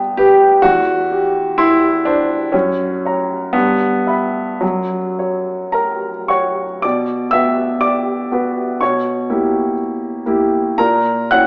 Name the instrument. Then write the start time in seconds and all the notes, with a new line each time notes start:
grand piano
Already playing: G2 B3 G4 G5
0.17 G4 B4
0.62 E2 F#4
1.11 G4
1.58 E4 C6
2.05 D4 C5
2.52 F#2 C#4
3.05 C#5 A#5
3.53 G2 B3
4.07 E5 B5
4.61 F#2 F#3
5.19 C#5
5.74 A#4 A#5
6.28 C#5 F#5 C#6
6.82 B2 D5 D6
7.31 B3 F#4 B4 E5 E6
7.81 D5 D6
8.32 B3 F#4 B4
8.81 B2 C#5 C#6
9.30 A#3 E4 G4
10.26 A#3 E4 G4
10.78 A#2 A#4 A#5
11.31 C#4 E4 F#4 F#5 F#6